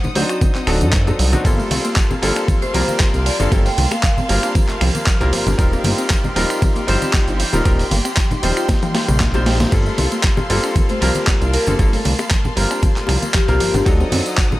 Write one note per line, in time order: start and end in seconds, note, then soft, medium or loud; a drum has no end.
0.00 0.09 D#4 medium
0.00 1.41 C5 medium
0.00 1.41 F#5 medium
0.00 1.41 D#6 medium
0.00 tambourine soft
0.04 high conga medium
0.04 low conga medium
0.15 0.24 D2 medium
0.15 0.65 F#3 medium
0.15 0.24 F#3 medium
0.15 0.65 C4 medium
0.15 0.65 D4 medium
0.15 0.65 D#4 medium
0.15 0.65 C5 medium
0.15 open hi-hat loud
0.15 high bongo medium
0.29 0.37 F#4 loud
0.29 finger snap medium
0.29 closed hi-hat medium
0.29 tambourine medium
0.41 0.50 F#3 medium
0.41 kick loud
0.41 closed hi-hat medium
0.41 tambourine medium
0.41 high conga medium
0.55 0.60 C4 loud
0.55 clap soft
0.55 closed hi-hat soft
0.55 tambourine soft
0.67 0.83 D1 medium
0.67 1.03 F#3 medium
0.67 0.76 F#3 loud
0.67 1.03 C4 medium
0.67 1.04 D4 medium
0.67 1.04 D#4 medium
0.67 1.04 A4 loud
0.67 finger snap medium
0.67 open hi-hat loud
0.67 high bongo soft
0.81 1.12 F#2 medium
0.81 0.84 D4 medium
0.81 closed hi-hat medium
0.81 tambourine medium
0.81 high conga medium
0.93 1.02 F#3 loud
0.93 kick loud
0.93 clap loud
0.93 closed hi-hat medium
0.93 tambourine medium
1.06 1.29 F#3 medium
1.06 1.29 C4 medium
1.06 1.30 D4 medium
1.06 1.30 D#4 medium
1.06 1.10 D#4 medium
1.06 1.30 A4 medium
1.06 closed hi-hat soft
1.06 tambourine soft
1.06 high bongo medium
1.06 low conga medium
1.19 1.36 C2 medium
1.19 1.28 F#3 medium
1.19 open hi-hat loud
1.32 1.42 F#3 medium
1.32 1.42 C4 medium
1.32 1.42 D4 medium
1.32 1.42 D#4 medium
1.32 1.40 F#4 loud
1.32 1.42 F#4 medium
1.32 closed hi-hat soft
1.32 tambourine medium
1.32 high conga medium
1.32 low conga medium
1.44 1.62 G1 loud
1.44 1.53 F3 medium
1.44 2.19 G3 medium
1.44 2.19 A#3 medium
1.44 5.55 A#3 medium
1.44 2.20 C4 medium
1.44 2.20 F4 medium
1.44 2.20 A4 loud
1.44 7.62 F5 medium
1.44 5.55 A5 medium
1.44 5.55 C6 medium
1.44 kick loud
1.44 closed hi-hat medium
1.44 ride medium
1.44 tambourine medium
1.59 1.64 A3 loud
1.59 tambourine soft
1.71 1.79 C2 medium
1.71 1.74 A3 loud
1.71 open hi-hat loud
1.71 ride medium
1.71 high bongo soft
1.71 high conga medium
1.85 1.88 A#3 medium
1.85 closed hi-hat soft
1.85 tambourine medium
1.96 2.05 F3 loud
1.96 kick loud
1.96 clap loud
1.96 closed hi-hat medium
1.96 ride medium
1.96 tambourine medium
2.11 2.15 C4 medium
2.11 tambourine soft
2.11 high bongo medium
2.11 high conga medium
2.11 low conga medium
2.22 2.31 G1 medium
2.22 2.31 F3 medium
2.22 2.71 G3 medium
2.22 2.71 A#3 medium
2.22 2.71 C4 medium
2.22 2.71 F4 medium
2.22 2.72 A4 loud
2.22 open hi-hat loud
2.22 ride medium
2.36 2.44 D4 loud
2.36 finger snap medium
2.36 closed hi-hat medium
2.36 tambourine medium
2.48 2.57 F3 medium
2.48 kick loud
2.48 closed hi-hat medium
2.48 ride medium
2.48 tambourine medium
2.48 high conga medium
2.62 2.67 A3 loud
2.62 2.70 C5 medium
2.62 closed hi-hat soft
2.62 tambourine soft
2.62 high bongo medium
2.73 2.83 C2 medium
2.73 2.83 F3 loud
2.73 3.36 G3 loud
2.73 3.36 A#3 medium
2.73 3.36 C4 medium
2.73 3.37 F4 medium
2.73 3.37 A#4 loud
2.73 open hi-hat loud
2.73 ride medium
2.88 2.91 A#3 medium
2.88 closed hi-hat medium
2.88 tambourine medium
2.88 high conga medium
3.00 3.08 F3 loud
3.00 kick loud
3.00 clap loud
3.00 closed hi-hat medium
3.00 ride medium
3.00 tambourine medium
3.00 high bongo medium
3.14 3.30 C2 medium
3.14 3.17 C4 medium
3.14 closed hi-hat soft
3.14 tambourine soft
3.26 3.34 F3 medium
3.26 3.45 D5 medium
3.26 open hi-hat loud
3.26 ride medium
3.39 3.47 G1 medium
3.39 3.49 G3 medium
3.39 3.49 A#3 medium
3.39 3.49 C4 medium
3.39 3.47 D4 loud
3.39 3.49 F4 medium
3.39 3.49 A4 medium
3.39 closed hi-hat medium
3.39 tambourine medium
3.39 high conga medium
3.51 3.69 G1 loud
3.51 3.60 F3 medium
3.51 3.68 G3 medium
3.51 3.68 A#3 medium
3.51 3.69 C4 medium
3.51 3.69 F4 medium
3.51 3.69 A4 loud
3.51 kick loud
3.51 closed hi-hat medium
3.51 ride medium
3.51 tambourine medium
3.51 high bongo medium
3.66 3.71 A3 loud
3.66 3.83 G5 medium
3.66 open hi-hat medium
3.66 tambourine soft
3.78 3.87 C2 medium
3.78 3.81 A3 loud
3.78 open hi-hat loud
3.78 ride medium
3.78 high conga medium
3.91 3.94 A#3 medium
3.91 4.43 F5 medium
3.91 finger snap medium
3.91 tambourine medium
3.91 high bongo medium
4.03 4.12 F3 loud
4.03 kick loud
4.03 clap loud
4.03 closed hi-hat medium
4.03 ride medium
4.03 tambourine medium
4.17 4.22 C4 medium
4.17 tambourine soft
4.17 high conga medium
4.17 low conga medium
4.28 4.38 G1 medium
4.28 4.38 F3 medium
4.28 5.17 G3 medium
4.28 5.17 A#3 medium
4.28 5.18 C4 medium
4.28 5.18 F4 medium
4.28 5.18 A#4 medium
4.28 open hi-hat loud
4.28 ride medium
4.43 4.51 D4 loud
4.43 finger snap medium
4.43 closed hi-hat medium
4.43 tambourine medium
4.43 high bongo medium
4.55 4.64 F3 medium
4.55 kick loud
4.55 closed hi-hat medium
4.55 ride medium
4.55 tambourine medium
4.55 high conga medium
4.69 4.74 A3 loud
4.69 clap soft
4.69 closed hi-hat soft
4.69 tambourine soft
4.81 4.90 C2 loud
4.81 4.90 F3 loud
4.81 finger snap medium
4.81 open hi-hat loud
4.81 ride medium
4.81 high bongo medium
4.95 4.98 A#3 medium
4.95 closed hi-hat medium
4.95 tambourine medium
4.95 high conga medium
5.07 5.16 F3 loud
5.07 kick loud
5.07 clap loud
5.07 closed hi-hat medium
5.07 ride medium
5.07 tambourine medium
5.20 5.32 C2 medium
5.20 5.56 G3 medium
5.20 5.56 A#3 medium
5.20 5.56 C4 medium
5.20 5.24 C4 medium
5.20 5.56 F4 medium
5.20 5.56 A#4 loud
5.20 closed hi-hat soft
5.20 tambourine soft
5.20 low conga medium
5.33 5.44 G1 soft
5.33 5.41 F3 medium
5.33 open hi-hat loud
5.33 ride medium
5.33 high bongo soft
5.47 5.54 G1 medium
5.47 5.54 D4 loud
5.47 closed hi-hat medium
5.47 tambourine medium
5.47 high conga medium
5.47 low conga medium
5.57 5.76 D#1 loud
5.57 5.67 F3 medium
5.57 6.33 G3 medium
5.57 6.33 C4 medium
5.57 6.33 D#4 medium
5.57 6.34 F4 medium
5.57 9.68 G4 medium
5.57 6.34 A#4 loud
5.57 13.82 C6 medium
5.57 kick loud
5.57 closed hi-hat medium
5.57 ride medium
5.57 tambourine medium
5.73 5.78 A#3 loud
5.73 tambourine soft
5.73 high bongo medium
5.84 5.93 G1 medium
5.84 5.88 A#3 loud
5.84 open hi-hat loud
5.84 ride medium
5.84 high conga medium
5.98 6.01 C4 medium
5.98 closed hi-hat medium
5.98 tambourine medium
6.10 6.19 F3 loud
6.10 kick loud
6.10 clap loud
6.10 closed hi-hat medium
6.10 tambourine medium
6.24 6.29 D#4 medium
6.24 tambourine soft
6.24 high bongo soft
6.24 high conga medium
6.24 low conga medium
6.36 6.45 D#1 medium
6.36 6.45 F3 medium
6.36 6.85 G3 medium
6.36 6.85 C4 medium
6.36 6.85 D#4 medium
6.36 6.85 F4 medium
6.36 6.85 A#4 loud
6.36 open hi-hat loud
6.36 ride medium
6.50 6.58 F4 loud
6.50 finger snap medium
6.50 closed hi-hat medium
6.50 tambourine medium
6.62 6.71 F3 medium
6.62 kick loud
6.62 closed hi-hat medium
6.62 ride medium
6.62 tambourine medium
6.62 high bongo medium
6.62 high conga medium
6.76 6.81 A#3 loud
6.76 closed hi-hat soft
6.76 tambourine soft
6.87 6.97 G1 medium
6.87 6.97 F3 loud
6.87 7.50 G3 loud
6.87 7.50 C4 medium
6.87 7.50 D#4 medium
6.87 7.50 F4 medium
6.87 7.51 C5 loud
6.87 open hi-hat loud
6.87 ride medium
7.02 7.05 C4 medium
7.02 closed hi-hat medium
7.02 tambourine medium
7.02 high conga medium
7.13 7.22 F3 loud
7.13 kick loud
7.13 clap loud
7.13 closed hi-hat medium
7.13 ride medium
7.13 tambourine medium
7.13 high bongo medium
7.28 7.43 G1 medium
7.28 7.31 D#4 medium
7.28 closed hi-hat soft
7.28 tambourine soft
7.40 7.48 F3 medium
7.40 open hi-hat loud
7.40 ride medium
7.53 7.61 D#1 medium
7.53 7.62 G3 medium
7.53 7.63 C4 medium
7.53 7.63 D#4 medium
7.53 7.61 F4 loud
7.53 7.63 F4 medium
7.53 7.63 A#4 medium
7.53 closed hi-hat medium
7.53 tambourine medium
7.53 high bongo medium
7.53 high conga medium
7.65 7.83 D#1 loud
7.65 7.74 F3 medium
7.65 7.82 G3 medium
7.65 7.82 C4 medium
7.65 7.82 D#4 medium
7.65 7.82 F4 medium
7.65 7.83 A#4 loud
7.65 9.71 G5 medium
7.65 kick loud
7.65 closed hi-hat medium
7.65 ride medium
7.65 tambourine medium
7.79 7.84 A#3 loud
7.79 open hi-hat medium
7.79 tambourine soft
7.91 8.00 G1 medium
7.91 7.95 A#3 loud
7.91 open hi-hat loud
7.91 ride medium
7.91 high conga medium
8.05 8.08 C4 medium
8.05 finger snap medium
8.05 closed hi-hat medium
8.05 tambourine medium
8.05 high bongo medium
8.17 8.26 F3 loud
8.17 kick loud
8.17 clap loud
8.17 closed hi-hat medium
8.17 tambourine medium
8.31 8.36 D#4 medium
8.31 closed hi-hat soft
8.31 tambourine soft
8.31 high conga medium
8.31 low conga medium
8.42 8.52 D#1 medium
8.42 8.52 F3 medium
8.42 9.31 G3 medium
8.42 9.31 C4 medium
8.42 9.31 D#4 medium
8.42 9.32 F4 medium
8.42 9.32 C5 medium
8.42 open hi-hat loud
8.42 ride medium
8.42 high bongo medium
8.57 8.64 F4 loud
8.57 finger snap medium
8.57 tambourine medium
8.68 8.77 F3 medium
8.68 kick loud
8.68 snare medium
8.68 closed hi-hat medium
8.68 ride medium
8.68 tambourine medium
8.68 high conga medium
8.82 8.88 A#3 loud
8.82 closed hi-hat soft
8.82 high tom medium
8.82 tambourine soft
8.95 8.98 A#3 medium
8.95 snare medium
8.95 open hi-hat loud
8.95 ride medium
8.95 high bongo medium
9.08 9.65 A#1 loud
9.08 9.14 G3 loud
9.08 closed hi-hat medium
9.08 mid tom medium
9.08 tambourine medium
9.08 high conga medium
9.20 9.24 C4 medium
9.20 kick loud
9.20 snare medium
9.20 clap loud
9.20 closed hi-hat medium
9.20 ride medium
9.20 tambourine medium
9.34 9.69 G3 medium
9.34 9.40 A#3 loud
9.34 9.70 C4 medium
9.34 9.70 D#4 medium
9.34 9.70 F4 medium
9.34 9.70 C5 loud
9.34 closed hi-hat soft
9.34 tambourine soft
9.34 high bongo medium
9.34 low conga medium
9.46 9.52 F4 medium
9.46 snare loud
9.46 open hi-hat loud
9.46 ride medium
9.60 9.68 A#3 medium
9.60 snare medium
9.60 closed hi-hat medium
9.60 tambourine medium
9.60 high conga medium
9.60 low conga medium
9.71 9.89 G1 loud
9.71 9.81 F3 medium
9.71 10.47 G3 medium
9.71 10.47 A#3 medium
9.71 13.82 A#3 medium
9.71 10.47 C4 medium
9.71 10.47 F4 medium
9.71 10.48 A4 loud
9.71 13.82 F5 medium
9.71 13.82 A5 medium
9.71 kick loud
9.71 closed hi-hat medium
9.71 crash medium
9.71 ride medium
9.71 tambourine medium
9.86 9.91 A3 loud
9.86 tambourine soft
9.98 10.07 C2 medium
9.98 10.02 A3 loud
9.98 open hi-hat loud
9.98 ride medium
9.98 high bongo medium
9.98 high conga medium
10.12 10.15 A#3 medium
10.12 closed hi-hat medium
10.12 tambourine medium
10.23 10.33 F3 loud
10.23 kick loud
10.23 clap loud
10.23 closed hi-hat medium
10.23 ride medium
10.23 tambourine medium
10.37 10.43 C4 medium
10.37 tambourine soft
10.37 high bongo medium
10.37 high conga medium
10.37 low conga medium
10.49 10.59 G1 medium
10.49 10.59 F3 medium
10.49 10.99 G3 medium
10.49 10.99 A#3 medium
10.49 10.99 C4 medium
10.49 10.99 F4 medium
10.49 10.99 A4 loud
10.49 open hi-hat loud
10.49 ride medium
10.63 10.71 D4 loud
10.63 finger snap medium
10.63 closed hi-hat medium
10.63 tambourine medium
10.76 10.84 F3 medium
10.76 kick loud
10.76 closed hi-hat medium
10.76 ride medium
10.76 tambourine medium
10.76 high conga loud
10.89 10.95 A3 loud
10.89 10.97 C5 medium
10.89 closed hi-hat soft
10.89 tambourine soft
10.89 high bongo medium
11.01 11.11 C2 loud
11.01 11.10 F3 loud
11.01 11.64 G3 loud
11.01 11.64 A#3 medium
11.01 11.64 C4 medium
11.01 11.64 F4 medium
11.01 11.65 A#4 loud
11.01 11.11 C5 medium
11.01 open hi-hat loud
11.01 ride medium
11.15 11.19 A#3 medium
11.15 closed hi-hat medium
11.15 tambourine medium
11.15 high conga medium
11.27 11.36 F3 loud
11.27 kick loud
11.27 clap loud
11.27 closed hi-hat medium
11.27 ride medium
11.27 tambourine medium
11.27 high bongo medium
11.41 11.57 C2 medium
11.41 11.44 C4 medium
11.41 closed hi-hat soft
11.41 tambourine soft
11.53 11.62 F3 medium
11.53 11.72 A#4 medium
11.53 open hi-hat loud
11.53 ride medium
11.66 11.75 G1 medium
11.66 11.76 G3 medium
11.66 11.76 A#3 medium
11.66 11.76 C4 medium
11.66 11.75 D4 loud
11.66 11.77 F4 medium
11.66 11.77 A4 medium
11.66 closed hi-hat medium
11.66 tambourine medium
11.66 high conga medium
11.79 11.96 G1 loud
11.79 11.88 F3 medium
11.79 11.96 G3 medium
11.79 11.96 A#3 medium
11.79 11.96 C4 medium
11.79 11.96 F4 medium
11.79 11.96 A4 loud
11.79 kick loud
11.79 closed hi-hat medium
11.79 ride medium
11.79 tambourine medium
11.79 high bongo medium
11.93 11.98 A3 loud
11.93 open hi-hat medium
11.93 tambourine soft
12.05 12.14 C2 medium
12.05 12.09 A3 loud
12.05 open hi-hat loud
12.05 ride medium
12.05 high conga medium
12.19 12.22 A#3 medium
12.19 finger snap medium
12.19 closed hi-hat medium
12.19 tambourine medium
12.19 high bongo medium
12.31 12.40 F3 loud
12.31 kick loud
12.31 clap loud
12.31 closed hi-hat medium
12.31 ride medium
12.31 tambourine medium
12.45 12.50 C4 medium
12.45 tambourine soft
12.45 high conga medium
12.45 low conga medium
12.56 12.66 G1 medium
12.56 12.65 F3 medium
12.56 13.44 G3 medium
12.56 13.45 A#3 medium
12.56 13.45 C4 medium
12.56 13.45 F4 medium
12.56 13.46 A#4 medium
12.56 open hi-hat loud
12.56 ride medium
12.71 12.78 D4 loud
12.71 finger snap medium
12.71 tambourine medium
12.71 high bongo soft
12.82 12.91 F3 medium
12.82 kick loud
12.82 closed hi-hat medium
12.82 ride medium
12.82 tambourine medium
12.82 high conga medium
12.96 13.02 A3 loud
12.96 clap soft
12.96 closed hi-hat soft
12.96 tambourine soft
13.07 13.17 C2 loud
13.07 13.17 F3 loud
13.07 finger snap medium
13.07 open hi-hat loud
13.07 ride medium
13.07 high bongo medium
13.22 13.26 A#3 medium
13.22 closed hi-hat medium
13.22 tambourine medium
13.22 high conga medium
13.34 13.43 F3 loud
13.34 13.86 G4 medium
13.34 kick loud
13.34 clap loud
13.34 closed hi-hat medium
13.34 tambourine medium
13.48 13.60 C2 medium
13.48 13.83 G3 medium
13.48 13.83 A#3 medium
13.48 13.83 C4 medium
13.48 13.51 C4 medium
13.48 13.84 F4 medium
13.48 13.84 A#4 loud
13.48 closed hi-hat soft
13.48 tambourine soft
13.48 low conga medium
13.60 13.71 G1 soft
13.60 13.69 F3 medium
13.60 open hi-hat loud
13.60 ride medium
13.60 high bongo medium
13.74 13.82 G1 medium
13.74 13.82 D4 loud
13.74 closed hi-hat medium
13.74 tambourine medium
13.74 high conga medium
13.74 low conga medium
13.85 14.03 D2 loud
13.85 14.60 F#3 medium
13.85 13.95 F#3 medium
13.85 14.60 C4 medium
13.85 14.60 D4 medium
13.85 14.60 D#4 medium
13.85 14.60 A4 loud
13.85 14.60 C5 medium
13.85 14.60 F#5 medium
13.85 14.60 D#6 medium
13.85 kick loud
13.85 closed hi-hat medium
13.85 ride medium
13.85 tambourine medium
14.00 14.05 C4 loud
14.00 tambourine soft
14.00 high bongo medium
14.12 14.21 F#2 medium
14.12 14.16 C4 loud
14.12 open hi-hat loud
14.12 ride medium
14.12 high conga medium
14.26 14.29 D4 medium
14.26 closed hi-hat medium
14.26 tambourine medium
14.37 14.47 F#3 loud
14.37 kick loud
14.37 clap loud
14.37 closed hi-hat medium
14.37 ride medium
14.37 tambourine medium
14.52 14.57 D#4 medium
14.52 tambourine soft
14.52 high bongo medium
14.52 high conga medium
14.52 low conga medium